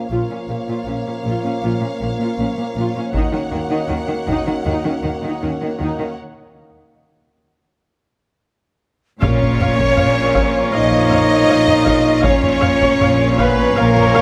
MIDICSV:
0, 0, Header, 1, 13, 480
1, 0, Start_track
1, 0, Tempo, 759494
1, 66, Time_signature, 4, 2, 24, 8
1, 8985, End_track
2, 0, Start_track
2, 0, Title_t, "Flute"
2, 0, Program_c, 0, 73
2, 5826, Note_on_c, 0, 73, 105
2, 6779, Note_on_c, 0, 75, 91
2, 6788, Note_off_c, 0, 73, 0
2, 7744, Note_on_c, 0, 73, 106
2, 7753, Note_off_c, 0, 75, 0
2, 8466, Note_on_c, 0, 71, 93
2, 8476, Note_off_c, 0, 73, 0
2, 8706, Note_off_c, 0, 71, 0
2, 8709, Note_on_c, 0, 70, 91
2, 8985, Note_off_c, 0, 70, 0
2, 8985, End_track
3, 0, Start_track
3, 0, Title_t, "Trumpet"
3, 0, Program_c, 1, 56
3, 5823, Note_on_c, 1, 73, 89
3, 7719, Note_off_c, 1, 73, 0
3, 7739, Note_on_c, 1, 73, 101
3, 8985, Note_off_c, 1, 73, 0
3, 8985, End_track
4, 0, Start_track
4, 0, Title_t, "Violin section"
4, 0, Program_c, 2, 48
4, 60, Note_on_c, 2, 77, 48
4, 1958, Note_off_c, 2, 77, 0
4, 1988, Note_on_c, 2, 78, 54
4, 3882, Note_off_c, 2, 78, 0
4, 5832, Note_on_c, 2, 73, 95
4, 6764, Note_off_c, 2, 73, 0
4, 6780, Note_on_c, 2, 75, 114
4, 7724, Note_off_c, 2, 75, 0
4, 7749, Note_on_c, 2, 73, 95
4, 8467, Note_off_c, 2, 73, 0
4, 8471, Note_on_c, 2, 71, 102
4, 8703, Note_on_c, 2, 70, 110
4, 8709, Note_off_c, 2, 71, 0
4, 8985, Note_off_c, 2, 70, 0
4, 8985, End_track
5, 0, Start_track
5, 0, Title_t, "Violin section"
5, 0, Program_c, 3, 48
5, 54, Note_on_c, 3, 73, 44
5, 3875, Note_off_c, 3, 73, 0
5, 5821, Note_on_c, 3, 73, 95
5, 6758, Note_off_c, 3, 73, 0
5, 6780, Note_on_c, 3, 75, 106
5, 7737, Note_on_c, 3, 73, 103
5, 7743, Note_off_c, 3, 75, 0
5, 8462, Note_off_c, 3, 73, 0
5, 8462, Note_on_c, 3, 71, 88
5, 8699, Note_off_c, 3, 71, 0
5, 8703, Note_on_c, 3, 70, 101
5, 8985, Note_off_c, 3, 70, 0
5, 8985, End_track
6, 0, Start_track
6, 0, Title_t, "Pipe organ"
6, 0, Program_c, 4, 19
6, 5808, Note_on_c, 4, 77, 75
6, 5812, Note_on_c, 4, 65, 77
6, 5814, Note_on_c, 4, 70, 69
6, 5815, Note_on_c, 4, 61, 77
6, 7712, Note_off_c, 4, 77, 0
6, 7714, Note_off_c, 4, 65, 0
6, 7715, Note_off_c, 4, 61, 0
6, 7715, Note_off_c, 4, 70, 0
6, 7743, Note_on_c, 4, 65, 77
6, 7745, Note_on_c, 4, 61, 82
6, 7747, Note_on_c, 4, 82, 80
6, 7749, Note_on_c, 4, 77, 85
6, 8985, Note_off_c, 4, 61, 0
6, 8985, Note_off_c, 4, 65, 0
6, 8985, Note_off_c, 4, 77, 0
6, 8985, Note_off_c, 4, 82, 0
6, 8985, End_track
7, 0, Start_track
7, 0, Title_t, "Viola section"
7, 0, Program_c, 5, 48
7, 68, Note_on_c, 5, 65, 49
7, 179, Note_off_c, 5, 65, 0
7, 192, Note_on_c, 5, 61, 43
7, 239, Note_off_c, 5, 61, 0
7, 316, Note_on_c, 5, 58, 40
7, 362, Note_off_c, 5, 58, 0
7, 434, Note_on_c, 5, 65, 50
7, 542, Note_off_c, 5, 65, 0
7, 559, Note_on_c, 5, 61, 36
7, 604, Note_off_c, 5, 61, 0
7, 682, Note_on_c, 5, 58, 40
7, 727, Note_off_c, 5, 58, 0
7, 805, Note_on_c, 5, 65, 64
7, 908, Note_off_c, 5, 65, 0
7, 924, Note_on_c, 5, 61, 47
7, 968, Note_off_c, 5, 61, 0
7, 1037, Note_on_c, 5, 65, 49
7, 1143, Note_off_c, 5, 65, 0
7, 1156, Note_on_c, 5, 61, 41
7, 1202, Note_off_c, 5, 61, 0
7, 1277, Note_on_c, 5, 58, 43
7, 1323, Note_off_c, 5, 58, 0
7, 1398, Note_on_c, 5, 65, 51
7, 1504, Note_off_c, 5, 65, 0
7, 1523, Note_on_c, 5, 61, 45
7, 1567, Note_off_c, 5, 61, 0
7, 1650, Note_on_c, 5, 58, 45
7, 1693, Note_off_c, 5, 58, 0
7, 1761, Note_on_c, 5, 65, 63
7, 1866, Note_off_c, 5, 65, 0
7, 1889, Note_on_c, 5, 61, 52
7, 1932, Note_off_c, 5, 61, 0
7, 2000, Note_on_c, 5, 63, 57
7, 2105, Note_off_c, 5, 63, 0
7, 2112, Note_on_c, 5, 61, 40
7, 2159, Note_off_c, 5, 61, 0
7, 2232, Note_on_c, 5, 58, 41
7, 2279, Note_off_c, 5, 58, 0
7, 2344, Note_on_c, 5, 63, 58
7, 2456, Note_off_c, 5, 63, 0
7, 2471, Note_on_c, 5, 61, 38
7, 2518, Note_off_c, 5, 61, 0
7, 2600, Note_on_c, 5, 58, 40
7, 2645, Note_off_c, 5, 58, 0
7, 2728, Note_on_c, 5, 63, 59
7, 2829, Note_off_c, 5, 63, 0
7, 2857, Note_on_c, 5, 61, 36
7, 2899, Note_off_c, 5, 61, 0
7, 2976, Note_on_c, 5, 63, 53
7, 3074, Note_off_c, 5, 63, 0
7, 3089, Note_on_c, 5, 61, 47
7, 3133, Note_off_c, 5, 61, 0
7, 3207, Note_on_c, 5, 58, 43
7, 3251, Note_off_c, 5, 58, 0
7, 3340, Note_on_c, 5, 63, 43
7, 3436, Note_off_c, 5, 63, 0
7, 3454, Note_on_c, 5, 61, 36
7, 3496, Note_off_c, 5, 61, 0
7, 3578, Note_on_c, 5, 58, 37
7, 3619, Note_off_c, 5, 58, 0
7, 3687, Note_on_c, 5, 63, 49
7, 3789, Note_off_c, 5, 63, 0
7, 3807, Note_on_c, 5, 61, 36
7, 3851, Note_off_c, 5, 61, 0
7, 5824, Note_on_c, 5, 73, 71
7, 5825, Note_on_c, 5, 77, 76
7, 5874, Note_off_c, 5, 73, 0
7, 5876, Note_off_c, 5, 77, 0
7, 6068, Note_on_c, 5, 77, 62
7, 6069, Note_on_c, 5, 73, 63
7, 6119, Note_off_c, 5, 77, 0
7, 6120, Note_off_c, 5, 73, 0
7, 6304, Note_on_c, 5, 73, 68
7, 6306, Note_on_c, 5, 77, 64
7, 6354, Note_off_c, 5, 73, 0
7, 6356, Note_off_c, 5, 77, 0
7, 6536, Note_on_c, 5, 77, 62
7, 6541, Note_on_c, 5, 73, 65
7, 6587, Note_off_c, 5, 77, 0
7, 6592, Note_off_c, 5, 73, 0
7, 6777, Note_on_c, 5, 73, 66
7, 6778, Note_on_c, 5, 77, 60
7, 6827, Note_off_c, 5, 73, 0
7, 6829, Note_off_c, 5, 77, 0
7, 7023, Note_on_c, 5, 73, 68
7, 7023, Note_on_c, 5, 77, 72
7, 7073, Note_off_c, 5, 73, 0
7, 7073, Note_off_c, 5, 77, 0
7, 7264, Note_on_c, 5, 73, 69
7, 7265, Note_on_c, 5, 77, 60
7, 7314, Note_off_c, 5, 73, 0
7, 7315, Note_off_c, 5, 77, 0
7, 7493, Note_on_c, 5, 77, 68
7, 7496, Note_on_c, 5, 73, 69
7, 7544, Note_off_c, 5, 77, 0
7, 7547, Note_off_c, 5, 73, 0
7, 7722, Note_on_c, 5, 77, 76
7, 7725, Note_on_c, 5, 73, 75
7, 7772, Note_off_c, 5, 77, 0
7, 7775, Note_off_c, 5, 73, 0
7, 7972, Note_on_c, 5, 73, 77
7, 7974, Note_on_c, 5, 77, 76
7, 8023, Note_off_c, 5, 73, 0
7, 8024, Note_off_c, 5, 77, 0
7, 8220, Note_on_c, 5, 73, 72
7, 8225, Note_on_c, 5, 77, 74
7, 8271, Note_off_c, 5, 73, 0
7, 8275, Note_off_c, 5, 77, 0
7, 8461, Note_on_c, 5, 73, 79
7, 8464, Note_on_c, 5, 77, 81
7, 8511, Note_off_c, 5, 73, 0
7, 8514, Note_off_c, 5, 77, 0
7, 8698, Note_on_c, 5, 77, 84
7, 8700, Note_on_c, 5, 73, 71
7, 8748, Note_off_c, 5, 77, 0
7, 8750, Note_off_c, 5, 73, 0
7, 8940, Note_on_c, 5, 77, 86
7, 8941, Note_on_c, 5, 73, 74
7, 8985, Note_off_c, 5, 73, 0
7, 8985, Note_off_c, 5, 77, 0
7, 8985, End_track
8, 0, Start_track
8, 0, Title_t, "French horn section"
8, 0, Program_c, 6, 60
8, 66, Note_on_c, 6, 65, 42
8, 67, Note_on_c, 6, 61, 42
8, 1961, Note_off_c, 6, 65, 0
8, 1995, Note_on_c, 6, 66, 52
8, 3881, Note_off_c, 6, 61, 0
8, 3910, Note_off_c, 6, 66, 0
8, 5818, Note_on_c, 6, 61, 102
8, 6757, Note_off_c, 6, 61, 0
8, 6779, Note_on_c, 6, 63, 113
8, 7738, Note_on_c, 6, 61, 116
8, 7743, Note_off_c, 6, 63, 0
8, 8462, Note_off_c, 6, 61, 0
8, 8466, Note_on_c, 6, 59, 97
8, 8706, Note_off_c, 6, 59, 0
8, 8717, Note_on_c, 6, 58, 120
8, 8985, Note_off_c, 6, 58, 0
8, 8985, End_track
9, 0, Start_track
9, 0, Title_t, "Trombone section"
9, 0, Program_c, 7, 61
9, 59, Note_on_c, 7, 53, 41
9, 60, Note_on_c, 7, 58, 47
9, 1957, Note_off_c, 7, 53, 0
9, 1985, Note_on_c, 7, 51, 53
9, 3878, Note_off_c, 7, 58, 0
9, 3880, Note_off_c, 7, 51, 0
9, 5819, Note_on_c, 7, 58, 78
9, 5825, Note_on_c, 7, 53, 83
9, 7717, Note_off_c, 7, 58, 0
9, 7721, Note_off_c, 7, 53, 0
9, 7736, Note_on_c, 7, 61, 82
9, 7742, Note_on_c, 7, 53, 85
9, 8985, Note_off_c, 7, 53, 0
9, 8985, Note_off_c, 7, 61, 0
9, 8985, End_track
10, 0, Start_track
10, 0, Title_t, "Cello section"
10, 0, Program_c, 8, 48
10, 67, Note_on_c, 8, 46, 56
10, 115, Note_off_c, 8, 46, 0
10, 191, Note_on_c, 8, 46, 37
10, 238, Note_off_c, 8, 46, 0
10, 305, Note_on_c, 8, 46, 46
10, 353, Note_off_c, 8, 46, 0
10, 428, Note_on_c, 8, 46, 55
10, 476, Note_off_c, 8, 46, 0
10, 549, Note_on_c, 8, 46, 45
10, 596, Note_off_c, 8, 46, 0
10, 670, Note_on_c, 8, 46, 38
10, 717, Note_off_c, 8, 46, 0
10, 785, Note_on_c, 8, 46, 52
10, 833, Note_off_c, 8, 46, 0
10, 908, Note_on_c, 8, 46, 43
10, 956, Note_off_c, 8, 46, 0
10, 1023, Note_on_c, 8, 46, 64
10, 1072, Note_off_c, 8, 46, 0
10, 1138, Note_on_c, 8, 46, 43
10, 1188, Note_off_c, 8, 46, 0
10, 1262, Note_on_c, 8, 46, 40
10, 1311, Note_off_c, 8, 46, 0
10, 1378, Note_on_c, 8, 46, 57
10, 1427, Note_off_c, 8, 46, 0
10, 1503, Note_on_c, 8, 46, 47
10, 1552, Note_off_c, 8, 46, 0
10, 1619, Note_on_c, 8, 46, 42
10, 1668, Note_off_c, 8, 46, 0
10, 1740, Note_on_c, 8, 46, 61
10, 1789, Note_off_c, 8, 46, 0
10, 1860, Note_on_c, 8, 46, 46
10, 1909, Note_off_c, 8, 46, 0
10, 1979, Note_on_c, 8, 51, 65
10, 2028, Note_off_c, 8, 51, 0
10, 2100, Note_on_c, 8, 51, 37
10, 2149, Note_off_c, 8, 51, 0
10, 2217, Note_on_c, 8, 51, 50
10, 2267, Note_off_c, 8, 51, 0
10, 2333, Note_on_c, 8, 51, 59
10, 2383, Note_off_c, 8, 51, 0
10, 2454, Note_on_c, 8, 51, 50
10, 2505, Note_off_c, 8, 51, 0
10, 2574, Note_on_c, 8, 51, 39
10, 2624, Note_off_c, 8, 51, 0
10, 2693, Note_on_c, 8, 51, 61
10, 2744, Note_off_c, 8, 51, 0
10, 2818, Note_on_c, 8, 51, 43
10, 2868, Note_off_c, 8, 51, 0
10, 2937, Note_on_c, 8, 51, 63
10, 2987, Note_off_c, 8, 51, 0
10, 3060, Note_on_c, 8, 51, 47
10, 3109, Note_off_c, 8, 51, 0
10, 3174, Note_on_c, 8, 51, 44
10, 3224, Note_off_c, 8, 51, 0
10, 3297, Note_on_c, 8, 51, 48
10, 3347, Note_off_c, 8, 51, 0
10, 3424, Note_on_c, 8, 51, 37
10, 3472, Note_off_c, 8, 51, 0
10, 3541, Note_on_c, 8, 51, 35
10, 3590, Note_off_c, 8, 51, 0
10, 3657, Note_on_c, 8, 51, 51
10, 3706, Note_off_c, 8, 51, 0
10, 3782, Note_on_c, 8, 51, 34
10, 3831, Note_off_c, 8, 51, 0
10, 5819, Note_on_c, 8, 46, 77
10, 6246, Note_off_c, 8, 46, 0
10, 6305, Note_on_c, 8, 46, 101
10, 6729, Note_off_c, 8, 46, 0
10, 6786, Note_on_c, 8, 46, 91
10, 7209, Note_off_c, 8, 46, 0
10, 7256, Note_on_c, 8, 46, 76
10, 7684, Note_off_c, 8, 46, 0
10, 7740, Note_on_c, 8, 46, 84
10, 8166, Note_off_c, 8, 46, 0
10, 8229, Note_on_c, 8, 46, 97
10, 8651, Note_off_c, 8, 46, 0
10, 8704, Note_on_c, 8, 46, 111
10, 8985, Note_off_c, 8, 46, 0
10, 8985, End_track
11, 0, Start_track
11, 0, Title_t, "Double bass section"
11, 0, Program_c, 10, 48
11, 64, Note_on_c, 10, 34, 47
11, 112, Note_off_c, 10, 34, 0
11, 305, Note_on_c, 10, 34, 39
11, 353, Note_off_c, 10, 34, 0
11, 536, Note_on_c, 10, 34, 37
11, 586, Note_off_c, 10, 34, 0
11, 780, Note_on_c, 10, 34, 57
11, 829, Note_off_c, 10, 34, 0
11, 1025, Note_on_c, 10, 34, 62
11, 1074, Note_off_c, 10, 34, 0
11, 1263, Note_on_c, 10, 34, 49
11, 1311, Note_off_c, 10, 34, 0
11, 1504, Note_on_c, 10, 34, 43
11, 1552, Note_off_c, 10, 34, 0
11, 1741, Note_on_c, 10, 34, 64
11, 1790, Note_off_c, 10, 34, 0
11, 1979, Note_on_c, 10, 39, 55
11, 2029, Note_off_c, 10, 39, 0
11, 2215, Note_on_c, 10, 39, 43
11, 2265, Note_off_c, 10, 39, 0
11, 2455, Note_on_c, 10, 39, 43
11, 2505, Note_off_c, 10, 39, 0
11, 2697, Note_on_c, 10, 39, 59
11, 2747, Note_off_c, 10, 39, 0
11, 2935, Note_on_c, 10, 39, 60
11, 2986, Note_off_c, 10, 39, 0
11, 3175, Note_on_c, 10, 39, 39
11, 3225, Note_off_c, 10, 39, 0
11, 3423, Note_on_c, 10, 39, 35
11, 3472, Note_off_c, 10, 39, 0
11, 3670, Note_on_c, 10, 39, 48
11, 3717, Note_off_c, 10, 39, 0
11, 5827, Note_on_c, 10, 34, 84
11, 6250, Note_off_c, 10, 34, 0
11, 6308, Note_on_c, 10, 34, 85
11, 6730, Note_off_c, 10, 34, 0
11, 6789, Note_on_c, 10, 34, 85
11, 7211, Note_off_c, 10, 34, 0
11, 7265, Note_on_c, 10, 34, 79
11, 7689, Note_off_c, 10, 34, 0
11, 7737, Note_on_c, 10, 34, 76
11, 8165, Note_off_c, 10, 34, 0
11, 8222, Note_on_c, 10, 34, 97
11, 8647, Note_off_c, 10, 34, 0
11, 8698, Note_on_c, 10, 34, 105
11, 8985, Note_off_c, 10, 34, 0
11, 8985, End_track
12, 0, Start_track
12, 0, Title_t, "Impact"
12, 0, Program_c, 11, 103
12, 5827, Note_on_c, 11, 60, 83
12, 7746, Note_off_c, 11, 60, 0
12, 8985, End_track
13, 0, Start_track
13, 0, Title_t, "Taiko and cinematic ensemble drums"
13, 1988, Note_on_c, 9, 41, 61
13, 2051, Note_off_c, 9, 41, 0
13, 2707, Note_on_c, 9, 41, 32
13, 2770, Note_off_c, 9, 41, 0
13, 5832, Note_on_c, 9, 41, 97
13, 5895, Note_off_c, 9, 41, 0
13, 5953, Note_on_c, 9, 45, 54
13, 6016, Note_off_c, 9, 45, 0
13, 6067, Note_on_c, 9, 45, 55
13, 6131, Note_off_c, 9, 45, 0
13, 6187, Note_on_c, 9, 41, 86
13, 6250, Note_off_c, 9, 41, 0
13, 6305, Note_on_c, 9, 45, 62
13, 6368, Note_off_c, 9, 45, 0
13, 6542, Note_on_c, 9, 41, 78
13, 6605, Note_off_c, 9, 41, 0
13, 6898, Note_on_c, 9, 45, 53
13, 6961, Note_off_c, 9, 45, 0
13, 7021, Note_on_c, 9, 45, 68
13, 7085, Note_off_c, 9, 45, 0
13, 7379, Note_on_c, 9, 45, 57
13, 7442, Note_off_c, 9, 45, 0
13, 7496, Note_on_c, 9, 41, 87
13, 7560, Note_off_c, 9, 41, 0
13, 7735, Note_on_c, 9, 41, 100
13, 7799, Note_off_c, 9, 41, 0
13, 7858, Note_on_c, 9, 45, 54
13, 7921, Note_off_c, 9, 45, 0
13, 7980, Note_on_c, 9, 45, 68
13, 8043, Note_off_c, 9, 45, 0
13, 8096, Note_on_c, 9, 41, 87
13, 8159, Note_off_c, 9, 41, 0
13, 8221, Note_on_c, 9, 45, 69
13, 8285, Note_off_c, 9, 45, 0
13, 8461, Note_on_c, 9, 41, 90
13, 8524, Note_off_c, 9, 41, 0
13, 8825, Note_on_c, 9, 45, 53
13, 8888, Note_off_c, 9, 45, 0
13, 8947, Note_on_c, 9, 45, 77
13, 8985, Note_off_c, 9, 45, 0
13, 8985, End_track
0, 0, End_of_file